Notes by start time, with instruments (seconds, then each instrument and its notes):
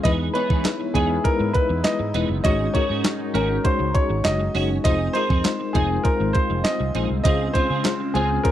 0.03 fretless electric bass E2, fm electric piano E3 G#3 D#4 E4 B4, analog synth pad G#3 B3 D#4 E4, clean electric guitar B3 D#4 G#4, grand piano D#5, kick, closed hi-hat
0.34 fm electric piano G#3 D#4 E4 C#5, clean electric guitar B3 D#4 G#4, grand piano B4, closed hi-hat
0.50 fretless electric bass E3, clean electric guitar B3 D#4 G#4, kick
0.64 fm electric piano G#3 D#4 E4 B4, muted clean electric guitar stroke, snare, clap, closed hi-hat
0.80 muted clean electric guitar stroke
0.94 fretless electric bass E2, fm electric piano G#3 D#4 E4 C#5, clean electric guitar B3 D#4 G#4, grand piano G#4, kick, closed hi-hat
1.09 muted clean electric guitar stroke
1.24 fm electric piano G#3 D#4 E4 B4, grand piano A#4, muted clean electric guitar stroke, kick, closed hi-hat
1.40 fretless electric bass G#2, muted clean electric guitar stroke
1.53 fm electric piano D#4 E4 B4, grand piano B4, kick, closed hi-hat
1.69 fretless electric bass E2, muted clean electric guitar stroke
1.84 fm electric piano G#3 D#4 E4 B4, grand piano D#5, muted clean electric guitar stroke, snare, clap, closed hi-hat
1.99 fretless electric bass G#2, muted clean electric guitar stroke
2.14 fretless electric bass E1, fm electric piano G#3 D#4 E4 B4, clean electric guitar B3 D#4 G#4, closed hi-hat
2.29 fretless electric bass F#1, muted clean electric guitar stroke
2.44 fretless electric bass G#1, fm electric piano G#2 G#3 D#4 F#4 C#5, clean electric guitar C#4 F#4 G#4, analog synth pad C#4 F#4, grand piano D#5, kick, closed hi-hat
2.74 fm electric piano G#3 D#4 F#4 A#4, clean electric guitar C#4 F#4 G#4, grand piano C#5, kick, closed hi-hat
2.89 fretless electric bass G#2, clean electric guitar C#4 F#4 G#4
3.04 fm electric piano G#3 D#4 F#4 C#5, muted clean electric guitar stroke, snare, clap, closed hi-hat
3.19 muted clean electric guitar stroke
3.34 fretless electric bass G#1, fm electric piano G#3 D#4 F#4 C#5, clean electric guitar C#4 F#4 G#4, grand piano A#4, closed hi-hat
3.49 muted clean electric guitar stroke
3.64 fm electric piano G#3 D#4 F#4 C#5, grand piano C5, muted clean electric guitar stroke, kick, closed hi-hat
3.79 fretless electric bass C#2, muted clean electric guitar stroke
3.94 fm electric piano G#3 D#4 F#4 G#4, grand piano C#5, kick, closed hi-hat
4.10 fretless electric bass G#1, muted clean electric guitar stroke
4.24 fretless electric bass F#1, fm electric piano G#3 D#4 F#4 C#5, grand piano D#5, muted clean electric guitar stroke, snare, clap, closed hi-hat
4.40 muted clean electric guitar stroke
4.54 fretless electric bass F#1, fm electric piano G#3 D#4 F#4 C#5, clean electric guitar C#4 F#4 G#4, open hi-hat
4.70 muted clean electric guitar stroke
4.84 fretless electric bass F1, fm electric piano G#3 D#4 F4 C5, analog synth pad G#3 C4 F4, clean electric guitar C4 D#4 G#4, grand piano D#5, kick, closed hi-hat
5.13 fm electric piano G#3 D#4 F4 A#4, clean electric guitar C4 D#4 G#4, grand piano C5, closed hi-hat
5.30 fretless electric bass F2, clean electric guitar C4 D#4 G#4, kick
5.44 fm electric piano G#3 D#4 F4 C5, muted clean electric guitar stroke, snare, clap, closed hi-hat
5.60 muted clean electric guitar stroke
5.73 fretless electric bass F1, fm electric piano G#3 D#4 F4 C5, clean electric guitar C4 D#4 G#4, grand piano G#4, kick, closed hi-hat
5.90 muted clean electric guitar stroke
6.04 fm electric piano G#3 D#4 F4 C5, grand piano A#4, muted clean electric guitar stroke, kick, closed hi-hat
6.20 fretless electric bass G#1, muted clean electric guitar stroke
6.33 fm electric piano G#3 D#4 F4, grand piano C5, kick, closed hi-hat
6.50 fretless electric bass F1, muted clean electric guitar stroke
6.64 fm electric piano G#3 D#4 F4 C5, grand piano D#5, muted clean electric guitar stroke, snare, clap, closed hi-hat
6.80 fretless electric bass C2, muted clean electric guitar stroke
6.94 fretless electric bass A#1, fm electric piano G#3 D#4 F4 C5, clean electric guitar C4 D#4 G#4, closed hi-hat
7.10 fretless electric bass C2, muted clean electric guitar stroke
7.24 fretless electric bass C#2, fm electric piano C#3 G#3 C#4 F4 C5, clean electric guitar C4 F4 G#4, analog synth pad C#4 F4, grand piano D#5, kick, closed hi-hat
7.54 fm electric piano G#3 C#4 F4 C5, clean electric guitar C4 F4 G#4, grand piano C5, kick, closed hi-hat
7.70 fretless electric bass C#3, clean electric guitar C4 F4 G#4
7.84 fm electric piano G#3 C#4 F4 C5, muted clean electric guitar stroke, snare, clap, closed hi-hat
8.00 muted clean electric guitar stroke
8.14 fretless electric bass C#2, fm electric piano G#3 C#4 F4 C5, clean electric guitar C4 F4 G#4, grand piano G#4, closed hi-hat
8.30 muted clean electric guitar stroke
8.43 fm electric piano G#3 C#4 F4 C5, grand piano A#4, muted clean electric guitar stroke, kick, closed hi-hat